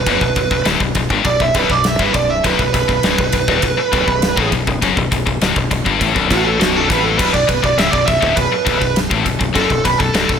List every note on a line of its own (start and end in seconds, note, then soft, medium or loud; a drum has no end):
0.00 0.63 B4 loud
0.06 0.21 F#1 medium
0.06 0.21 F#2 medium
0.06 kick medium
0.06 ride medium
0.21 0.35 B0 medium
0.21 0.35 B1 medium
0.21 kick medium
0.36 0.50 B0 medium
0.36 0.51 B1 medium
0.36 kick medium
0.36 ride medium
0.51 0.64 B0 medium
0.51 0.65 B1 medium
0.51 kick medium
0.65 0.79 D1 medium
0.65 0.80 D2 loud
0.65 snare loud
0.65 ride medium
0.80 0.95 B0 medium
0.80 0.95 B1 medium
0.80 kick medium
0.95 1.10 B0 medium
0.95 1.10 B1 medium
0.95 kick medium
0.95 ride medium
1.10 1.24 G1 loud
1.10 1.25 G2 loud
1.10 kick medium
1.24 1.39 B0 medium
1.24 1.40 B1 medium
1.24 1.40 D5 loud
1.24 kick medium
1.24 ride medium
1.40 1.54 B0 medium
1.40 1.54 B1 medium
1.40 1.55 E5 medium
1.40 kick medium
1.54 1.69 B0 loud
1.54 1.69 B1 loud
1.54 1.71 B4 medium
1.54 kick medium
1.54 ride medium
1.69 1.97 B0 medium
1.69 1.94 B1 medium
1.69 1.85 D5 loud
1.69 kick medium
1.84 2.01 E5 loud
1.84 snare loud
1.84 ride loud
1.99 2.13 G1 medium
1.99 2.14 G2 medium
1.99 2.14 B4 medium
1.99 kick loud
2.14 2.42 B0 medium
2.14 2.38 B1 medium
2.14 2.29 D5 loud
2.14 kick medium
2.14 ride medium
2.30 2.44 E5 medium
2.44 2.58 B0 loud
2.44 2.58 B1 loud
2.44 2.72 B4 medium
2.44 kick loud
2.44 ride loud
2.59 2.73 B0 medium
2.59 2.73 B1 medium
2.59 kick medium
2.73 2.88 B0 medium
2.73 2.87 B1 medium
2.73 4.48 B4 loud
2.73 kick medium
2.73 ride medium
2.88 3.03 B0 medium
2.88 3.03 B1 medium
2.88 kick medium
3.03 3.18 C#1 medium
3.03 3.17 C#2 loud
3.03 snare loud
3.03 ride loud
3.18 3.32 B0 medium
3.18 3.32 B1 medium
3.18 kick medium
3.32 3.47 B0 medium
3.32 3.48 B1 medium
3.32 kick medium
3.32 ride medium
3.48 3.62 D1 loud
3.48 3.62 D2 loud
3.48 kick medium
3.62 3.77 B0 medium
3.62 3.76 B1 medium
3.62 kick medium
3.62 ride loud
3.77 muted distorted electric guitar stroke medium
3.77 muted fingered electric bass stroke soft
3.92 4.07 B0 loud
3.92 4.06 B1 loud
3.92 kick loud
3.92 ride medium
4.07 4.35 B0 medium
4.07 4.31 B1 medium
4.07 kick medium
4.22 snare loud
4.22 ride loud
4.37 4.51 A1 loud
4.37 4.51 A2 medium
4.37 kick loud
4.52 4.66 B0 medium
4.52 4.66 B1 medium
4.52 kick medium
4.52 ride medium
4.67 4.81 B0 medium
4.67 4.81 B1 medium
4.67 kick medium
4.82 4.96 F#1 medium
4.82 4.96 F#2 medium
4.82 kick medium
4.82 ride medium
4.97 5.11 B0 medium
4.97 5.10 B1 medium
4.97 kick medium
5.12 5.25 B0 medium
5.12 5.25 B1 medium
5.12 kick medium
5.12 ride medium
5.26 5.40 B0 medium
5.26 5.41 B1 medium
5.26 kick medium
5.41 5.55 D1 medium
5.41 5.55 D2 loud
5.41 snare loud
5.41 ride medium
5.56 5.70 B0 medium
5.56 5.70 B1 medium
5.56 kick medium
5.71 5.85 B0 medium
5.71 5.85 B1 medium
5.71 kick medium
5.71 ride medium
5.85 6.00 G1 loud
5.85 5.99 G2 loud
5.85 kick medium
6.00 6.15 A1 medium
6.00 6.14 A2 loud
6.00 kick loud
6.00 ride medium
6.14 6.29 B0 medium
6.14 6.29 B1 medium
6.14 kick medium
6.30 6.58 A1 loud
6.30 6.59 A2 medium
6.30 6.45 F#4 loud
6.30 kick medium
6.30 ride medium
6.46 6.59 A4 medium
6.59 6.87 B0 medium
6.59 6.88 B1 loud
6.59 6.76 F#4 medium
6.59 snare loud
6.59 ride loud
6.76 6.89 A4 medium
6.89 7.17 A1 loud
6.89 7.17 A2 loud
6.89 7.03 B4 medium
6.89 kick loud
6.89 ride medium
7.03 7.17 A4 medium
7.18 7.33 B0 medium
7.18 7.32 B1 loud
7.18 7.33 B4 loud
7.18 kick loud
7.18 crash medium
7.33 7.48 B0 medium
7.33 7.46 B1 medium
7.33 7.49 D5 loud
7.33 kick medium
7.47 7.63 B0 medium
7.47 7.61 B1 medium
7.47 7.63 B4 medium
7.47 kick medium
7.47 ride medium
7.63 7.76 B0 medium
7.63 7.77 B1 medium
7.63 7.78 D5 medium
7.63 kick medium
7.77 7.91 C#1 medium
7.77 7.92 C#2 loud
7.77 7.91 E5 loud
7.77 snare loud
7.77 ride loud
7.92 8.07 B0 medium
7.92 8.06 B1 medium
7.92 8.06 D5 medium
7.92 kick medium
8.06 8.22 B0 medium
8.06 8.20 B1 medium
8.06 8.36 E5 medium
8.06 kick medium
8.06 ride medium
8.21 8.36 D1 loud
8.21 8.36 D2 loud
8.21 kick medium
8.36 8.50 B0 medium
8.36 8.51 B1 medium
8.36 8.94 B4 medium
8.36 kick medium
8.36 ride loud
8.51 muted fingered electric bass stroke soft
8.51 muted distorted electric guitar stroke medium
8.65 8.80 B0 loud
8.65 8.79 B1 medium
8.65 kick loud
8.65 ride medium
8.80 9.09 B0 medium
8.80 9.05 B1 medium
8.80 kick medium
8.96 snare loud
8.96 ride loud
9.11 9.25 A1 medium
9.11 9.24 A2 medium
9.11 kick loud
9.25 9.40 B0 medium
9.25 9.38 B1 medium
9.25 kick medium
9.25 ride medium
9.39 9.54 B0 medium
9.39 9.53 B1 medium
9.39 kick medium
9.54 9.69 F#1 loud
9.54 9.69 F#2 loud
9.54 9.84 A4 loud
9.54 kick medium
9.54 ride medium
9.69 9.84 B0 medium
9.69 9.84 B1 medium
9.69 kick medium
9.85 9.99 B0 medium
9.85 9.98 B1 medium
9.85 9.98 B4 loud
9.85 kick medium
9.85 ride medium
9.99 10.14 B0 medium
9.99 10.14 B1 medium
9.99 10.39 A4 medium
9.99 kick medium
10.14 10.28 D1 loud
10.14 10.28 D2 loud
10.14 snare loud
10.14 ride medium
10.29 10.39 B0 medium
10.29 10.39 B1 medium
10.29 kick medium